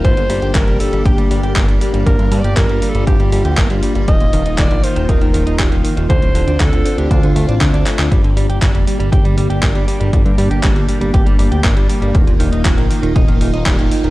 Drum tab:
HH |xxoxxxoxxxoxxxox|xxoxxxoxxxoxxxox|xxoxxxoxxxoxxxox|xxoxxxoxxxoxxxox|
CP |----x-------x---|----x-------x---|----x-------x---|----x-------x-xx|
BD |o---o---o---o---|o---o---o---o---|o---o---o---o---|o---o---o---o---|

HH |xxoxxxoxxxoxxxox|xxoxxxoxxxoxxxox|xxoxxxoxxxoxxxox|
CP |----x-------x---|----x-------x---|----x-------x---|
BD |o---o---o---o---|o---o---o---o---|o---o---o---o---|